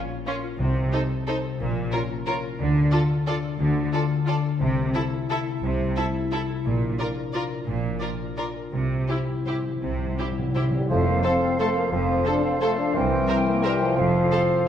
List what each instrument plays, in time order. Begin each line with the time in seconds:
Already playing: harp A#2 A#3 C#4 A#4
0.09 harp F4
0.27 viola section C#4, violin section F4 C#5, harp A#4
0.43 harp F4
0.59 double bass section C2, harp C3, cello section C3, timpani C3
0.76 harp C4
0.93 harp D#4, viola section D#4, violin section A4 C5
1.10 harp A4
1.27 viola section D#4, violin section A4 C5, harp C5
1.44 harp A4
1.60 double bass section A#1, cello section A#2, harp A#2
1.76 harp A#3
1.92 harp C#4, viola section F4, violin section A#4 C#5
2.10 harp F4
2.26 viola section F4, violin section A#4 C#5, harp A#4
2.44 harp F4
2.59 double bass section D2, harp D3, cello section D3
2.75 harp D4
2.92 viola section F4, harp F4, violin section A4 D5
3.09 harp A4
3.27 viola section F4, violin section A4 D5, harp D5
3.44 harp A4
3.59 double bass section D2, cello section D3, harp D3
3.76 harp D4
3.93 viola section F4, harp F4, violin section A4 D5
4.11 harp A4
4.27 viola section F4, violin section A4 D5, harp D5
4.44 harp A4
4.61 double bass section C2, cello section C3, harp C3
4.78 harp A3
4.94 viola section E4, harp E4, violin section A4 E5
5.13 harp A4
5.30 viola section E4, harp E4, violin section A4 E5
5.47 harp A4
5.63 double bass section C2, harp C3, cello section C3
5.80 harp A3
5.97 harp E4, viola section E4, violin section A4 E5
6.15 harp A4
6.32 harp E4, viola section E4, violin section A4 E5
6.49 harp A4
6.65 double bass section A#1, cello section A#2, harp A#2
6.82 harp D4
6.99 harp F4, viola section F4, violin section A#4 D5
7.16 harp A#4
7.34 viola section F4, violin section A#4 D5, harp D5
7.50 harp A#4
7.67 double bass section A#1, harp A#2, cello section A#2
7.83 harp D4
8.00 harp F4, viola section F4, violin section A#4 D5
8.19 harp A#4
8.37 viola section F4, violin section A#4 D5, harp D5
8.55 harp A#4
8.73 double bass section C2, harp C3, cello section C3, timpani C3
8.90 harp C4
8.97 timpani C3
9.05 timpani C3
9.09 timpani C3, harp E4, viola section E4, violin section G4 C5
9.20 timpani C3
9.28 timpani C3, harp G4
9.37 timpani C3
9.45 timpani C3, viola section E4, violin section G4 C5, harp C5
9.53 timpani C3
9.61 timpani C3, harp G4
9.69 timpani C3
9.76 timpani C3
9.83 double bass section C2, cello section C3, harp C3, timpani C3
9.91 timpani C3
9.98 timpani C3, harp C4
10.06 timpani C3
10.14 timpani C3
10.19 timpani C3, harp E4, viola section E4, violin section G4 C5
10.31 timpani C3
10.37 timpani C3, harp G4
10.47 timpani C3
10.55 timpani C3, viola section E4, violin section G4 C5, harp C5
10.63 timpani C3
10.71 timpani C3, french horn section G3, harp G4
10.78 timpani C3
10.90 double bass section F1, cello section F2, harp F3, bassoon F3, french horn section A3, clarinet A4, cor anglais C5, flute section F5
10.98 harp C4
11.07 french horn section A#3, harp F4
11.15 harp A4
11.23 bassoon F3, french horn section C4, clarinet A4, viola section A4, violin section A4 C5, cor anglais C5, harp C5, flute section F5
11.33 harp F5
11.42 harp A5
11.50 harp C6
11.59 bassoon F3, french horn section A3, clarinet A4, viola section A4, violin section A4 C5, cor anglais C5, flute section F5, harp A5
11.68 harp F5
11.75 french horn section A#3, harp C5
11.84 harp A4
11.92 double bass section F1, cello section F2, harp F3, bassoon F3, french horn section C4, clarinet A4, cor anglais C5, flute section F5
12.01 harp C4
12.09 harp F4
12.17 harp A4
12.25 french horn section D4, viola section A4, violin section A4 C5, harp C5
12.35 harp F5
12.44 french horn section C4, harp A5
12.53 harp C6
12.61 bassoon F3, french horn section A3, clarinet A4, viola section A4, violin section A4 C5, cor anglais C5, flute section F5, harp A5
12.71 harp F5
12.78 french horn section D4, harp C5
12.87 harp A4
12.95 cello section C2, double bass section C2, harp C3, bassoon E3, french horn section C4, clarinet A#4, cor anglais C5, flute section G5
13.03 harp G3
13.12 harp C4
13.20 harp E4
13.28 viola section A#4, harp A#4, violin section C5 E5
13.38 harp C5
13.47 french horn section A#3, harp E5
13.56 harp A#5
13.64 bassoon E3, french horn section G3, viola section A#4, clarinet A#4, cor anglais C5, violin section C5 E5, harp E5, flute section G5
13.73 harp C5
13.81 french horn section F3, harp A#4
13.89 harp E4
13.97 double bass section F1, cello section F2, harp F2, bassoon F3, clarinet A4, cor anglais C5, flute section F5
14.06 harp C3
14.15 harp C4
14.23 harp F4
14.31 viola section A4, harp A4, violin section C5 F5
14.41 harp C5
14.50 harp F5
14.59 harp A5